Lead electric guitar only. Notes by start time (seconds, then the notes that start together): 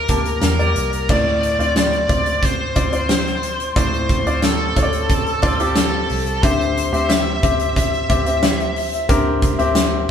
Already playing: A#4
0.44 A#4
1.11 D5
1.77 D5
2.45 C5
3.78 C5
4.45 A4
5.78 A4
6.43 C5
7.09 E5
7.77 E5